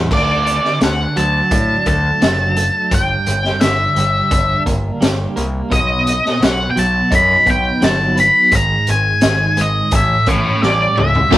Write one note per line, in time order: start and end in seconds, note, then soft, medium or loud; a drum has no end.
0.00 0.11 A2 medium
0.00 0.11 G3 medium
0.00 0.11 C#4 medium
0.00 0.11 E4 medium
0.11 0.58 D2 medium
0.11 0.79 D3 medium
0.11 0.78 D5 medium
0.11 kick loud
0.11 crash loud
0.47 closed hi-hat medium
0.65 snare soft
0.80 1.05 D2 medium
0.80 2.56 D3 medium
0.80 1.18 F#5 medium
0.80 snare loud
0.80 closed hi-hat medium
1.16 1.40 D2 medium
1.16 2.20 F#3 medium
1.16 1.87 A5 medium
1.16 closed hi-hat medium
1.51 1.75 A2 medium
1.51 2.91 D4 medium
1.51 kick loud
1.51 closed hi-hat medium
1.86 2.10 D2 medium
1.86 2.56 A3 medium
1.86 2.95 A5 medium
1.86 kick medium
1.86 closed hi-hat medium
2.21 2.69 F#1 medium
2.21 2.91 F#3 medium
2.21 snare loud
2.21 closed hi-hat medium
2.56 2.92 A3 medium
2.56 closed hi-hat medium
2.91 3.15 G1 medium
2.91 4.67 G2 medium
2.91 3.61 G5 medium
2.91 kick loud
2.91 closed hi-hat medium
3.26 3.50 G1 medium
3.26 closed hi-hat medium
3.44 snare soft
3.61 3.85 G1 medium
3.61 5.37 D3 medium
3.61 4.62 E5 medium
3.61 snare loud
3.61 closed hi-hat medium
3.96 4.20 G1 medium
3.96 5.00 G3 medium
3.96 closed hi-hat medium
4.31 4.55 G1 medium
4.31 5.71 D4 medium
4.31 kick loud
4.31 closed hi-hat loud
4.66 4.90 G1 medium
4.66 5.35 A#3 medium
4.66 kick medium
4.66 closed hi-hat medium
5.01 5.25 G1 medium
5.01 5.71 G3 medium
5.01 snare loud
5.01 closed hi-hat medium
5.36 5.60 C2 medium
5.36 5.71 A#3 medium
5.36 closed hi-hat medium
5.70 6.18 B1 medium
5.70 6.39 B2 medium
5.70 6.44 D#5 medium
5.70 kick loud
5.70 closed hi-hat medium
6.07 closed hi-hat medium
6.25 snare soft
6.40 6.65 B1 medium
6.40 8.16 B2 medium
6.40 6.70 F#5 medium
6.40 snare loud
6.40 closed hi-hat medium
6.71 6.77 G5 medium
6.76 7.00 B1 medium
6.76 7.80 F#3 medium
6.76 7.14 A5 medium
6.76 closed hi-hat medium
7.11 7.35 F#2 medium
7.11 8.51 D#4 medium
7.11 kick loud
7.11 closed hi-hat medium
7.15 7.50 B5 loud
7.46 7.70 B1 medium
7.46 8.15 B3 medium
7.46 kick medium
7.46 closed hi-hat medium
7.50 7.84 G5 medium
7.81 8.29 G1 medium
7.81 8.52 F#3 medium
7.81 8.19 A5 medium
7.81 snare loud
7.81 closed hi-hat medium
8.16 8.51 B3 medium
8.16 closed hi-hat medium
8.20 8.54 B5 medium
8.51 8.75 G#1 medium
8.51 9.92 G#2 medium
8.51 kick loud
8.51 closed hi-hat medium
8.56 8.90 A#5 medium
8.87 9.11 G#1 medium
8.87 9.61 G#5 loud
8.87 closed hi-hat medium
9.21 9.46 G#1 loud
9.21 9.92 D#3 medium
9.21 snare loud
9.21 closed hi-hat medium
9.57 9.81 G#1 medium
9.57 9.92 G#3 medium
9.57 closed hi-hat medium
9.61 9.95 D#5 medium
9.91 10.15 A1 medium
9.91 11.32 A2 medium
9.91 kick loud
9.91 closed hi-hat loud
9.95 10.95 E5 medium
10.26 10.51 A1 medium
10.26 10.96 C#4 medium
10.26 10.60 C#5 medium
10.26 kick medium
10.26 closed hi-hat medium
10.62 10.86 A1 medium
10.62 11.32 G3 medium
10.62 10.96 D5 medium
10.62 snare medium
10.97 11.21 C#2 medium
10.97 11.32 C#4 medium
10.97 11.38 E5 medium
10.97 mid tom medium
11.15 floor tom medium
11.32 11.38 D2 medium
11.32 11.38 D3 medium
11.32 11.38 F#3 medium
11.32 11.38 A3 loud
11.32 11.38 D4 loud
11.32 kick loud
11.32 crash loud